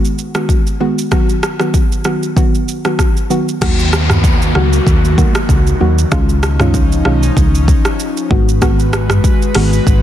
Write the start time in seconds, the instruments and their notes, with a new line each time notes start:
0.05 shaker
0.18 shaker
0.35 synth pluck D#3 G#3 B3 F#4, cross-stick, shaker
0.49 kick, shaker
0.67 shaker
0.80 synth pluck D#3 G#3 B3 F#4
0.98 shaker
1.11 synth pluck D#3 F#3 B3 F#4, kick, cross-stick, shaker
1.29 shaker
1.43 cross-stick, shaker
1.60 synth pluck D#3 F#3 B3 F#4, cross-stick, shaker
1.74 kick, shaker
1.92 shaker
2.04 synth pluck D#3 F#3 B3 F#4, cross-stick, shaker
2.23 shaker
2.36 synth pluck D#3 F#3 B3 F#4, kick, shaker
2.55 shaker
2.68 shaker
2.85 synth pluck D#3 F#3 B3 F#4, cross-stick, shaker
2.99 kick, cross-stick, shaker
3.17 shaker
3.30 synth pluck D#3 F#3 B3 F#4, shaker
3.49 shaker
3.61 fingered electric bass D#2, synth pluck D#3 F#3 A#3 F#4, analog synth pad D#3 A#3 F#4, kick, cross-stick, crash, downlifter, shaker
3.79 shaker
3.93 cross-stick, shaker
4.10 cross-stick, mid tom, shaker
4.24 kick, shaker
4.42 shaker
4.55 fingered electric bass C#2, synth pluck D#3 F#3 A#3 F#4, cross-stick
4.73 shaker
4.87 fingered electric bass D#2, kick, shaker
5.05 shaker
5.18 synth pluck D#3 F#3 A#3 F#4, kick, shaker
5.35 cross-stick, shaker
5.49 fingered electric bass C#2, kick, shaker
5.67 shaker
5.80 fingered electric bass D#2, synth pluck D#3 F#3 A#3 F#4
5.99 shaker
6.11 fingered electric bass C#2, synth pluck D#3 G#3 C#4 F4, analog synth pad F3 C#4 D#4, kick, cross-stick, shaker
6.29 shaker
6.43 cross-stick, shaker
6.60 synth pluck D#3 G#3 C#4 F4, cross-stick, mid tom, shaker
6.74 kick, shaker
6.92 shaker
7.05 fingered electric bass B1, synth pluck D#3 G#3 C#4 F4, cross-stick
7.23 shaker
7.37 fingered electric bass C#2, kick, shaker
7.55 shaker
7.68 kick, shaker
7.85 cross-stick, shaker
8.00 shaker
8.17 shaker
8.30 fingered electric bass G#1, synth pluck D#3 G#3 B3 F#4, analog synth pad G#3 F#4 B4, kick
8.49 shaker
8.62 synth pluck D#3 G#3 B3 F#4, kick, cross-stick, shaker
8.79 shaker
8.93 cross-stick, shaker
9.10 cross-stick, mid tom, shaker
9.24 kick, shaker
9.42 shaker
9.55 fingered electric bass G#1, synth pluck D#3 G#3 B3 F#4, cross-stick, open hi-hat
9.73 shaker
9.87 fingered electric bass G#1, kick, shaker